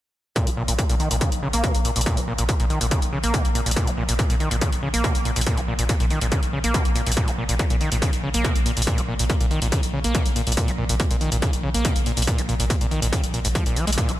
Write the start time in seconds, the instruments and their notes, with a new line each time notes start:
0.36 acid bass A#2, kick, closed hi-hat
0.47 sub bass A#1, acid bass A#3, closed hi-hat
0.57 sub bass A#1, acid bass A#2
0.68 sub bass A#1, acid bass A#2, closed hi-hat
0.79 acid bass A#2, kick, closed hi-hat
0.89 sub bass A#1, acid bass A#2, closed hi-hat
1.00 acid bass D#3, closed hi-hat
1.11 sub bass A#1, acid bass A#2, closed hi-hat
1.21 acid bass C#3, kick, closed hi-hat
1.32 sub bass A#1, closed hi-hat
1.42 sub bass A#1, acid bass C#3
1.53 sub bass A#1, acid bass A#3, closed hi-hat
1.64 acid bass A#2, kick, closed hi-hat
1.75 sub bass A#1, closed hi-hat
1.85 acid bass A#2, closed hi-hat
1.96 sub bass A#1, acid bass A#2, closed hi-hat
2.01 closed hi-hat
2.06 acid bass A#2, kick, closed hi-hat
2.17 sub bass A#1, acid bass A#3, closed hi-hat
2.27 sub bass A#1, acid bass A#2
2.38 sub bass A#1, acid bass A#2, closed hi-hat
2.49 acid bass A#2, kick, closed hi-hat
2.60 sub bass A#1, acid bass A#2, closed hi-hat
2.70 acid bass D#3, closed hi-hat
2.81 sub bass A#1, acid bass A#2, closed hi-hat
2.91 acid bass C#3, kick, closed hi-hat
3.02 sub bass A#1, closed hi-hat
3.13 sub bass A#1, acid bass C#3
3.24 sub bass A#1, acid bass A#3, closed hi-hat
3.34 acid bass A#2, kick, closed hi-hat
3.45 sub bass A#1, closed hi-hat
3.55 acid bass A#2, closed hi-hat
3.66 sub bass A#1, acid bass A#2, closed hi-hat
3.71 closed hi-hat
3.76 acid bass A#2, kick, closed hi-hat
3.87 sub bass A#1, acid bass A#3, closed hi-hat
3.98 sub bass A#1, acid bass A#2
4.09 sub bass A#1, acid bass A#2, closed hi-hat
4.19 acid bass A#2, kick, closed hi-hat
4.30 sub bass A#1, acid bass A#2, closed hi-hat
4.40 acid bass D#3, closed hi-hat
4.51 sub bass A#1, acid bass A#2, closed hi-hat
4.61 acid bass C#3, kick, closed hi-hat
4.72 sub bass A#1, closed hi-hat
4.83 sub bass A#1, acid bass C#3
4.94 sub bass A#1, acid bass A#3, closed hi-hat
5.04 acid bass A#2, kick, closed hi-hat
5.15 sub bass A#1, closed hi-hat
5.25 acid bass A#2, closed hi-hat
5.36 sub bass A#1, acid bass A#2, closed hi-hat
5.41 closed hi-hat
5.47 acid bass A#2, kick, closed hi-hat
5.57 sub bass A#1, acid bass A#3, closed hi-hat
5.68 sub bass A#1, acid bass A#2
5.79 sub bass A#1, acid bass A#2, closed hi-hat
5.89 acid bass A#2, kick, closed hi-hat
6.00 sub bass A#1, acid bass A#2, closed hi-hat
6.10 acid bass D#3, closed hi-hat
6.21 sub bass A#1, acid bass A#2, closed hi-hat
6.32 acid bass C#3, kick, closed hi-hat
6.43 sub bass A#1, closed hi-hat
6.53 sub bass A#1, acid bass C#3
6.64 sub bass A#1, acid bass A#3, closed hi-hat
6.74 acid bass A#2, kick, closed hi-hat
6.85 sub bass A#1, closed hi-hat
6.96 acid bass A#2, closed hi-hat
7.07 sub bass A#1, acid bass A#2, closed hi-hat
7.12 closed hi-hat
7.17 acid bass A#2, kick, closed hi-hat
7.28 sub bass A#1, acid bass A#3, closed hi-hat
7.38 sub bass A#1, acid bass A#2
7.49 sub bass A#1, acid bass A#2, closed hi-hat
7.59 acid bass A#2, kick, closed hi-hat
7.70 sub bass A#1, acid bass A#2, closed hi-hat
7.81 acid bass D#3, closed hi-hat
7.92 sub bass A#1, acid bass A#2, closed hi-hat
8.02 acid bass C#3, kick, closed hi-hat
8.13 sub bass A#1, closed hi-hat
8.23 sub bass A#1, acid bass C#3
8.34 sub bass A#1, acid bass A#3, closed hi-hat
8.45 acid bass A#2, kick, closed hi-hat
8.55 sub bass A#1, closed hi-hat
8.66 acid bass A#2, closed hi-hat
8.77 sub bass A#1, acid bass A#2, closed hi-hat
8.82 closed hi-hat
8.87 acid bass A#2, kick, closed hi-hat
8.98 sub bass A#1, acid bass A#3, closed hi-hat
9.08 sub bass A#1, acid bass A#2
9.19 sub bass A#1, acid bass A#2, closed hi-hat
9.30 acid bass A#2, kick, closed hi-hat
9.41 sub bass A#1, acid bass A#2, closed hi-hat
9.51 acid bass D#3, closed hi-hat
9.62 sub bass A#1, acid bass A#2, closed hi-hat
9.72 acid bass C#3, kick, closed hi-hat
9.83 sub bass A#1, closed hi-hat
9.93 sub bass A#1, acid bass C#3
10.04 sub bass A#1, acid bass A#3, closed hi-hat
10.15 acid bass A#2, kick, closed hi-hat
10.26 sub bass A#1, closed hi-hat
10.36 acid bass A#2, closed hi-hat
10.47 sub bass A#1, acid bass A#2, closed hi-hat
10.52 closed hi-hat
10.57 acid bass A#2, kick, closed hi-hat
10.68 sub bass A#1, acid bass A#3, closed hi-hat
10.78 sub bass A#1, acid bass A#2
10.89 sub bass A#1, acid bass A#2, closed hi-hat
11.00 acid bass A#2, kick, closed hi-hat
11.11 sub bass A#1, acid bass A#2, closed hi-hat
11.21 acid bass D#3, closed hi-hat
11.32 sub bass A#1, acid bass A#2, closed hi-hat
11.42 acid bass C#3, kick, closed hi-hat
11.53 sub bass A#1, closed hi-hat
11.63 sub bass A#1, acid bass C#3
11.74 sub bass A#1, acid bass A#3, closed hi-hat
11.85 acid bass A#2, kick, closed hi-hat
11.96 sub bass A#1, closed hi-hat
12.06 acid bass A#2, closed hi-hat
12.17 sub bass A#1, acid bass A#2, closed hi-hat
12.22 closed hi-hat
12.27 acid bass A#2, kick, closed hi-hat
12.38 sub bass A#1, acid bass A#3, closed hi-hat
12.49 sub bass A#1, acid bass A#2, closed hi-hat
12.60 sub bass A#1, acid bass A#2, closed hi-hat
12.70 acid bass A#2, kick, closed hi-hat
12.81 sub bass A#1, acid bass A#2, closed hi-hat
12.91 acid bass D#3, closed hi-hat
13.02 sub bass A#1, acid bass A#2, closed hi-hat
13.13 acid bass C#3, kick, closed hi-hat
13.24 sub bass A#1, closed hi-hat
13.34 sub bass A#1, acid bass A#2, closed hi-hat
13.45 sub bass A#1, acid bass G#2, closed hi-hat
13.55 acid bass F3, kick, closed hi-hat
13.66 sub bass A#1, acid bass A#2, closed hi-hat
13.76 acid bass F3, closed hi-hat
13.87 sub bass A#1, acid bass G#3, closed hi-hat
13.93 closed hi-hat
13.97 acid bass A#2, kick, closed hi-hat
14.09 sub bass A#1, acid bass A#3, closed hi-hat